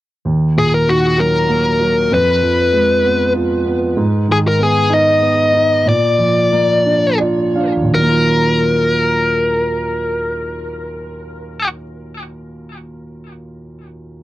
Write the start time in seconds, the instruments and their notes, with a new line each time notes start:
0.25 grand piano D#2
0.57 grand piano A#2, lead electric guitar G#4
0.74 lead electric guitar A#4
0.87 grand piano D#3, lead electric guitar F#4
1.18 grand piano F#3, lead electric guitar A#4
1.48 grand piano A#3
1.80 grand piano F#3
2.11 grand piano F2, lead electric guitar B4
2.42 grand piano F3
2.73 grand piano G#3
3.04 grand piano B3
3.35 grand piano F4
3.66 grand piano B3
3.97 grand piano G#2
4.28 grand piano D#3
4.32 lead electric guitar G#4
4.48 lead electric guitar A#4
4.59 grand piano B3
4.63 lead electric guitar G#4
4.90 grand piano D#4, lead electric guitar D#5
5.21 grand piano B3
5.53 grand piano D#4
5.86 grand piano A#2, lead electric guitar D5
6.19 grand piano F3
6.52 grand piano A#3
6.85 grand piano D4
7.20 grand piano F4 D5
7.55 grand piano D4 F5
7.76 grand piano D#2
7.83 grand piano A#2
7.89 grand piano D#3
7.95 grand piano F#3, lead electric guitar A#4
8.02 grand piano A#3
8.08 grand piano F4